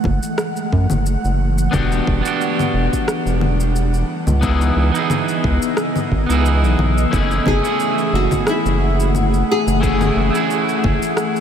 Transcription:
0.00 11.40 E3 medium
0.00 1.70 G#3 medium
0.00 1.69 A3 medium
0.00 4.05 F#5 medium
0.00 low conga medium
0.05 0.20 F#1 loud
0.05 kick loud
0.23 shaker medium
0.38 cross-stick medium
0.38 shaker medium
0.57 shaker soft
0.73 0.87 F#2 loud
0.73 kick medium
0.90 1.17 F#1 medium
0.90 low conga medium
0.90 shaker medium
1.06 shaker medium
1.24 1.68 F#1 medium
1.24 shaker soft
1.58 shaker medium
1.71 2.01 E1 medium
1.71 4.06 G3 medium
1.71 2.20 B3 medium
1.71 2.20 D4 medium
1.71 4.06 D4 medium
1.71 2.21 F#4 medium
1.71 2.22 G4 medium
1.71 kick loud
1.71 low conga medium
1.71 shaker medium
1.92 shaker soft
2.07 2.22 E1 medium
2.07 kick loud
2.21 4.05 B3 medium
2.21 4.06 D4 medium
2.25 4.07 F#4 medium
2.25 4.08 G4 medium
2.25 shaker medium
2.41 shaker medium
2.59 low conga medium
2.59 shaker soft
2.74 2.89 E1 loud
2.93 kick medium
2.93 shaker medium
3.08 cross-stick medium
3.08 shaker medium
3.26 4.04 E1 medium
3.26 shaker soft
3.41 low conga medium
3.60 shaker medium
3.76 shaker medium
3.94 shaker soft
4.09 7.10 C#3 medium
4.09 7.09 B3 medium
4.09 7.10 D#5 medium
4.27 4.71 C#2 loud
4.27 low conga medium
4.27 shaker medium
4.41 4.90 B3 medium
4.41 4.90 D#4 medium
4.41 4.91 E4 medium
4.41 4.91 G#4 medium
4.41 kick loud
4.41 shaker soft
4.61 shaker soft
4.76 4.91 C#2 medium
4.92 6.25 B3 medium
4.92 6.26 D#4 medium
4.92 shaker medium
4.96 6.27 E4 medium
4.96 6.28 G#4 medium
5.10 low conga medium
5.10 shaker medium
5.29 shaker soft
5.44 5.59 C#2 medium
5.44 kick loud
5.62 shaker medium
5.77 cross-stick medium
5.77 shaker soft
5.96 low conga medium
5.96 shaker soft
6.12 6.26 G#1 medium
6.12 kick medium
6.26 6.65 C#2 medium
6.26 7.07 B3 medium
6.26 7.08 D#4 medium
6.26 shaker medium
6.31 7.09 E4 medium
6.31 7.10 G#4 medium
6.46 shaker medium
6.63 6.76 B1 loud
6.63 shaker soft
6.78 7.06 B1 medium
6.78 low conga medium
6.98 shaker medium
7.11 7.40 F#1 medium
7.11 7.59 A3 medium
7.11 11.40 A3 medium
7.11 7.60 C#4 medium
7.11 7.60 E4 medium
7.11 11.40 G#4 medium
7.11 7.61 G#4 loud
7.11 11.40 F#5 medium
7.11 kick loud
7.11 shaker medium
7.31 shaker soft
7.46 7.61 F#1 medium
7.46 8.10 G#4 loud
7.46 kick loud
7.46 low conga medium
7.61 9.77 A3 medium
7.61 9.78 C#4 medium
7.61 shaker medium
7.66 9.79 E4 medium
7.66 9.80 G#4 medium
7.80 shaker medium
7.98 shaker soft
8.13 8.28 F#1 loud
8.13 8.49 F#4 medium
8.31 kick medium
8.31 low conga medium
8.31 shaker medium
8.47 9.46 E4 medium
8.47 cross-stick medium
8.47 shaker medium
8.65 9.43 F#1 loud
8.65 shaker soft
9.00 shaker medium
9.15 low conga medium
9.15 shaker medium
9.34 shaker soft
9.52 11.40 G#4 medium
9.67 10.11 F#1 loud
9.67 shaker medium
9.81 10.29 A3 medium
9.81 10.30 C#4 medium
9.81 10.30 E4 medium
9.81 10.31 G#4 loud
9.81 kick loud
9.81 shaker soft
10.01 low conga medium
10.01 shaker soft
10.16 10.31 F#1 medium
10.30 11.40 A3 medium
10.30 11.40 C#4 medium
10.35 11.40 E4 medium
10.35 11.40 G#4 medium
10.35 shaker medium
10.51 shaker soft
10.69 shaker soft
10.84 10.99 F#1 loud
10.84 kick loud
10.84 low conga medium
11.02 shaker medium
11.17 cross-stick medium
11.17 shaker medium
11.36 shaker soft

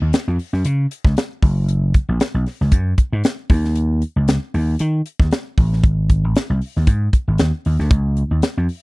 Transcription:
0.01 0.11 D#2 medium
0.13 snare loud
0.13 closed hi-hat medium
0.28 0.37 F2 medium
0.39 open hi-hat medium
0.53 0.62 F#2 medium
0.53 snare soft
0.65 0.85 C#3 loud
0.65 closed hi-hat loud
0.91 closed hi-hat medium
1.04 1.14 C#2 medium
1.04 kick medium
1.04 snare soft
1.17 snare loud
1.17 closed hi-hat medium
1.43 1.94 F#1 medium
1.43 kick loud
1.43 open hi-hat medium
1.69 closed hi-hat medium
1.94 kick medium
1.94 closed hi-hat medium
2.09 2.18 A#1 medium
2.20 snare loud
2.20 closed hi-hat medium
2.34 2.44 B1 medium
2.46 snare soft
2.46 open hi-hat medium
2.61 2.70 C#2 medium
2.61 snare soft
2.72 2.93 F#2 loud
2.72 kick medium
2.72 closed hi-hat loud
2.98 kick medium
2.98 closed hi-hat medium
3.12 3.22 G#2 loud
3.24 snare loud
3.24 closed hi-hat medium
3.50 4.02 D#2 loud
3.50 kick loud
3.50 open hi-hat medium
3.65 snare soft
3.76 closed hi-hat medium
4.02 closed hi-hat medium
4.16 4.36 C#2 medium
4.28 snare loud
4.28 closed hi-hat medium
4.54 4.74 D#2 medium
4.54 open hi-hat medium
4.79 5.00 D#3 loud
4.79 closed hi-hat loud
5.06 closed hi-hat medium
5.20 5.29 D#2 medium
5.20 kick medium
5.20 snare soft
5.31 snare loud
5.31 closed hi-hat medium
5.58 5.84 A1 medium
5.58 kick loud
5.58 open hi-hat medium
5.73 snare soft
5.83 6.24 G#1 loud
5.83 kick loud
5.83 closed hi-hat medium
6.10 kick medium
6.10 closed hi-hat medium
6.24 6.33 A1 medium
6.36 snare loud
6.36 closed hi-hat medium
6.50 6.59 C2 medium
6.61 open hi-hat medium
6.76 6.85 D#2 medium
6.76 snare soft
6.87 7.08 G#2 loud
6.87 kick medium
6.87 closed hi-hat loud
7.13 kick medium
7.13 closed hi-hat medium
7.28 7.37 G#1 medium
7.38 7.50 D#2 medium
7.38 snare loud
7.38 closed hi-hat medium
7.65 7.76 D#2 medium
7.65 open hi-hat medium
7.79 7.88 D2 medium
7.79 snare soft
7.91 8.22 C#2 loud
7.91 kick loud
7.91 closed hi-hat medium
8.17 closed hi-hat medium
8.31 8.40 D#2 medium
8.42 snare loud
8.42 closed hi-hat medium
8.57 8.66 F2 medium
8.69 open hi-hat medium

